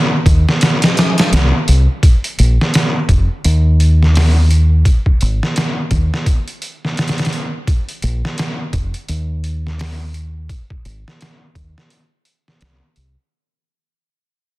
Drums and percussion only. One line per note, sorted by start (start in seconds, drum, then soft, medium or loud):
0.26 kick loud
0.26 closed hi-hat medium
0.49 snare medium
0.61 snare loud
0.61 closed hi-hat medium
0.82 snare loud
0.82 closed hi-hat medium
0.97 snare loud
0.97 closed hi-hat medium
1.18 snare loud
1.18 closed hi-hat medium
1.33 snare loud
1.33 closed hi-hat medium
1.68 closed hi-hat medium
2.03 kick loud
2.03 closed hi-hat medium
2.24 closed hi-hat soft
2.39 closed hi-hat medium
2.61 snare soft
2.74 snare loud
2.74 closed hi-hat medium
3.09 kick medium
3.09 closed hi-hat medium
3.44 closed hi-hat medium
3.80 closed hi-hat medium
4.03 snare soft
4.15 snare loud
4.15 open hi-hat medium
4.51 closed hi-hat medium
4.85 kick loud
4.85 closed hi-hat medium
5.06 kick medium
5.21 closed hi-hat medium
5.43 snare soft
5.56 snare loud
5.56 closed hi-hat medium
5.91 kick medium
5.91 closed hi-hat medium
6.14 snare soft
6.26 kick medium
6.26 closed hi-hat medium
6.48 closed hi-hat soft
6.62 closed hi-hat medium
6.85 snare soft
6.97 snare medium
6.97 closed hi-hat medium
7.08 snare medium
7.08 closed hi-hat medium
7.18 snare medium
7.18 closed hi-hat medium
7.25 snare medium
7.25 closed hi-hat medium
7.33 closed hi-hat medium
7.67 kick loud
7.67 closed hi-hat medium
7.89 closed hi-hat soft
8.02 closed hi-hat medium
8.25 snare soft
8.38 snare loud
8.38 closed hi-hat medium
8.73 kick medium
8.73 closed hi-hat medium
8.94 closed hi-hat soft
9.09 closed hi-hat medium
9.44 closed hi-hat medium
9.67 snare soft
9.79 snare loud
9.79 open hi-hat medium
10.14 closed hi-hat medium
10.49 kick loud
10.49 closed hi-hat medium
10.70 kick medium
10.85 closed hi-hat medium
11.08 snare soft
11.21 snare loud
11.21 closed hi-hat medium
11.55 kick medium
11.55 closed hi-hat medium
11.78 snare soft
11.90 closed hi-hat medium
12.25 closed hi-hat medium
12.48 snare soft
12.61 snare loud
12.61 closed hi-hat medium
12.96 closed hi-hat medium